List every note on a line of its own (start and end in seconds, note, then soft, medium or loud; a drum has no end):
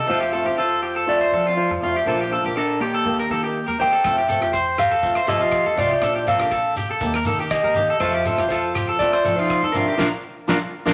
0.00 0.10 D#5 medium
0.06 0.41 F2 loud
0.06 0.23 F3 medium
0.06 0.23 A3 medium
0.06 0.24 C4 medium
0.06 0.24 F4 medium
0.06 0.55 F4 medium
0.06 0.20 A4 medium
0.11 0.58 C5 loud
0.21 0.32 G4 medium
0.31 0.45 F3 medium
0.31 0.46 A3 medium
0.31 0.44 C4 medium
0.31 0.43 F4 medium
0.31 0.45 A4 medium
0.44 1.21 F2 medium
0.44 0.61 A3 soft
0.44 0.60 C4 soft
0.44 0.60 F4 soft
0.44 0.57 G4 medium
0.58 1.04 F4 medium
0.58 0.82 A4 medium
0.58 1.08 C5 medium
0.83 0.95 G4 medium
0.96 1.19 A4 medium
1.06 1.22 F3 medium
1.06 1.23 A3 medium
1.06 1.23 C4 medium
1.06 1.54 F4 medium
1.06 1.23 F4 medium
1.06 1.57 D5 medium
1.21 1.32 C5 medium
1.31 1.45 F3 medium
1.31 1.65 F3 medium
1.31 1.44 C4 medium
1.31 1.43 F4 medium
1.31 1.45 A4 medium
1.31 muted steel-string acoustic guitar stroke medium
1.44 1.61 A3 soft
1.44 1.60 C4 medium
1.44 1.59 F4 medium
1.44 1.69 F4 medium
1.57 2.03 F4 medium
1.57 2.03 C5 medium
1.70 1.80 F2 medium
1.70 muted clean electric guitar stroke medium
1.81 1.93 F2 medium
1.81 1.97 F3 medium
1.81 1.97 A3 medium
1.81 1.98 C4 medium
1.81 1.95 F4 medium
1.81 1.98 F4 medium
1.96 2.07 G4 medium
2.05 2.39 A#1 loud
2.05 2.21 F3 medium
2.05 2.22 A#3 medium
2.05 2.22 D4 medium
2.05 2.22 F4 medium
2.05 2.53 F4 medium
2.05 2.20 A4 medium
2.05 2.58 C5 medium
2.21 2.32 G4 medium
2.29 2.43 F3 medium
2.29 2.44 A#3 medium
2.29 2.43 D4 medium
2.29 2.42 F4 medium
2.29 2.44 A4 medium
2.43 2.97 A#1 medium
2.43 2.60 A#3 soft
2.43 2.59 D4 soft
2.43 2.58 F4 soft
2.43 2.56 G4 medium
2.57 2.79 D4 medium
2.57 2.80 A4 medium
2.57 2.82 A#4 medium
2.80 3.75 A#3 medium
2.80 2.93 G4 medium
2.80 3.76 G4 medium
2.94 3.18 A4 medium
3.04 3.27 D#2 loud
3.04 3.20 D#3 soft
3.04 3.21 A#3 medium
3.04 3.22 D#4 medium
3.04 3.22 G4 medium
3.19 3.30 A#4 medium
3.30 3.43 D#3 medium
3.30 3.63 D#3 medium
3.30 3.43 A#3 medium
3.30 3.43 D#4 medium
3.30 3.42 G4 medium
3.30 3.43 A4 medium
3.43 3.59 A#3 soft
3.43 3.58 D#4 soft
3.43 3.58 G4 medium
3.43 3.67 G4 medium
3.68 3.78 D#2 medium
3.68 3.79 A#4 medium
3.78 3.94 D#3 medium
3.78 3.91 D#3 medium
3.78 3.95 A#3 medium
3.78 3.95 D#4 medium
3.78 3.92 G4 medium
3.78 3.96 G4 medium
3.78 4.75 C5 medium
3.78 4.75 G5 medium
3.93 4.04 A4 medium
4.04 4.37 F2 loud
4.04 4.19 F3 medium
4.04 4.20 A3 medium
4.04 4.20 C4 medium
4.04 4.21 F4 medium
4.04 4.17 A4 medium
4.04 kick medium
4.04 cross-stick medium
4.04 shekere medium
4.18 4.29 G4 medium
4.28 4.42 F3 medium
4.28 4.42 A3 medium
4.28 4.43 C4 medium
4.28 4.39 F4 medium
4.28 4.41 A4 medium
4.28 closed hi-hat soft
4.28 shekere medium
4.41 5.17 F2 medium
4.41 4.57 A3 soft
4.41 4.56 F4 medium
4.41 4.53 G4 medium
4.41 cross-stick medium
4.41 shekere soft
4.53 4.77 C5 medium
4.53 kick medium
4.53 shekere medium
4.78 4.91 G4 medium
4.78 5.25 A4 medium
4.78 5.29 F5 loud
4.78 cross-stick medium
4.78 closed hi-hat medium
4.78 shekere medium
4.91 5.15 A4 medium
5.02 5.18 F3 medium
5.02 5.18 A3 medium
5.02 5.19 C4 medium
5.02 5.19 F4 medium
5.02 kick medium
5.02 shekere medium
5.15 5.28 C5 medium
5.15 cross-stick medium
5.26 5.40 F3 soft
5.26 5.61 F3 medium
5.26 5.40 A3 medium
5.26 5.40 C4 medium
5.26 5.38 F4 medium
5.26 5.74 G4 medium
5.26 5.40 A4 medium
5.26 5.78 D#5 medium
5.26 closed hi-hat soft
5.26 shekere loud
5.39 5.56 A3 soft
5.39 5.55 C4 soft
5.39 5.55 F4 medium
5.39 5.65 F4 medium
5.39 shekere soft
5.52 kick medium
5.52 cross-stick medium
5.52 shekere medium
5.66 5.76 F2 medium
5.66 5.77 A4 medium
5.76 5.89 C2 medium
5.76 5.92 F3 medium
5.76 5.93 A3 medium
5.76 5.93 C4 medium
5.76 6.24 F4 medium
5.76 5.90 F4 medium
5.76 5.93 F4 medium
5.76 6.24 D5 medium
5.76 closed hi-hat soft
5.76 shekere medium
5.91 6.02 G4 medium
6.00 6.35 A#1 loud
6.00 6.17 F3 medium
6.00 6.18 D4 medium
6.00 6.18 F4 medium
6.00 6.15 A4 medium
6.00 muted steel-string acoustic guitar stroke medium
6.00 kick medium
6.00 cross-stick medium
6.00 shekere medium
6.16 6.27 G4 medium
6.25 6.39 F3 medium
6.25 6.40 A#3 medium
6.25 6.39 D4 medium
6.25 6.37 F4 medium
6.25 6.74 A4 medium
6.25 6.40 A4 medium
6.25 6.74 F5 medium
6.25 closed hi-hat soft
6.25 shekere loud
6.38 6.93 A#1 medium
6.38 6.55 A#3 soft
6.38 6.55 D4 soft
6.38 6.54 F4 soft
6.38 6.52 G4 medium
6.38 cross-stick medium
6.38 shekere soft
6.51 6.76 A4 medium
6.51 kick medium
6.51 shekere medium
6.76 6.89 G4 medium
6.76 closed hi-hat soft
6.76 shekere medium
6.91 7.14 A4 medium
7.00 7.23 D#2 loud
7.00 7.16 D#3 medium
7.00 7.17 A#3 medium
7.00 7.18 G4 medium
7.00 muted steel-string acoustic guitar stroke medium
7.00 kick medium
7.00 shekere medium
7.14 7.26 A#4 medium
7.14 cross-stick medium
7.25 7.39 D#3 medium
7.25 7.59 D#3 medium
7.25 7.39 A#3 medium
7.25 7.40 D#4 medium
7.25 7.39 A4 medium
7.25 closed hi-hat soft
7.25 shekere loud
7.38 7.55 A#3 soft
7.38 7.54 D#4 soft
7.38 7.54 G4 medium
7.38 7.63 G4 medium
7.38 shekere soft
7.50 7.97 G4 medium
7.50 7.97 D#5 loud
7.50 kick medium
7.50 cross-stick medium
7.50 shekere medium
7.64 7.74 D#2 medium
7.64 7.75 A#4 medium
7.74 7.87 D#3 medium
7.74 7.91 D#3 medium
7.74 7.92 A#3 medium
7.74 7.88 G4 medium
7.74 closed hi-hat soft
7.74 shekere medium
7.79 7.93 D#4 medium
7.79 7.93 G4 medium
7.90 8.00 A4 medium
8.00 8.33 F2 loud
8.00 8.16 A3 medium
8.00 8.17 C4 medium
8.00 8.47 F4 medium
8.00 8.17 F4 medium
8.00 8.13 A4 medium
8.00 8.46 C5 loud
8.00 kick medium
8.00 cross-stick medium
8.00 shekere medium
8.14 8.25 G4 medium
8.25 8.39 A3 medium
8.25 8.40 C4 medium
8.25 8.38 A4 medium
8.25 closed hi-hat soft
8.25 shekere medium
8.29 8.38 F4 medium
8.38 9.13 F2 medium
8.38 8.53 F4 soft
8.38 8.50 G4 medium
8.38 cross-stick medium
8.42 8.55 C4 soft
8.49 8.97 F4 medium
8.49 8.75 A4 medium
8.49 8.99 C5 loud
8.49 kick medium
8.49 shekere medium
8.75 8.87 G4 medium
8.75 cross-stick medium
8.75 closed hi-hat soft
8.75 shekere medium
8.89 9.12 A4 medium
8.99 9.15 A3 medium
8.99 9.16 C4 medium
8.99 9.36 F4 medium
8.99 9.17 F4 medium
8.99 9.34 D5 loud
8.99 kick medium
8.99 shekere medium
9.13 9.24 C5 medium
9.13 cross-stick medium
9.24 9.57 F3 medium
9.24 9.37 A3 medium
9.24 9.38 C4 medium
9.24 9.36 F4 medium
9.24 9.37 A4 medium
9.24 closed hi-hat soft
9.24 shekere loud
9.36 9.73 D#4 medium
9.36 9.52 F4 soft
9.36 9.62 F4 medium
9.36 9.72 C5 medium
9.36 shekere soft
9.40 9.53 C4 soft
9.50 kick medium
9.50 cross-stick medium
9.50 shekere medium
9.62 9.72 F2 medium
9.62 9.74 A4 medium
9.72 9.85 F3 medium
9.72 9.89 A3 medium
9.72 9.90 C4 medium
9.72 9.97 D4 medium
9.72 9.87 F4 medium
9.72 9.90 F4 medium
9.72 9.97 A#4 medium
9.72 closed hi-hat medium
9.72 shekere medium
9.88 9.99 G4 medium
9.98 10.09 A#1 loud
9.98 10.06 A#3 medium
9.98 10.06 D4 medium
9.98 10.08 D4 medium
9.98 10.06 F4 medium
9.98 10.07 F4 medium
9.98 10.08 F4 medium
9.98 10.07 A#4 medium
9.98 10.08 A#4 medium
9.98 kick medium
9.98 snare medium
9.98 shekere loud
10.47 10.58 A#1 medium
10.47 10.56 A#3 medium
10.47 10.56 D4 medium
10.47 10.57 D4 medium
10.47 10.56 F4 medium
10.47 10.57 F4 loud
10.47 10.57 F4 medium
10.47 10.57 A#4 loud
10.47 10.57 A#4 medium
10.47 kick medium
10.47 snare medium
10.47 shekere medium
10.86 10.94 A#1 medium
10.86 10.93 A#3 medium
10.86 10.93 D4 medium
10.86 10.94 D4 medium
10.86 10.94 F4 medium
10.86 10.94 A#4 medium
10.86 kick medium
10.86 snare medium
10.86 shekere medium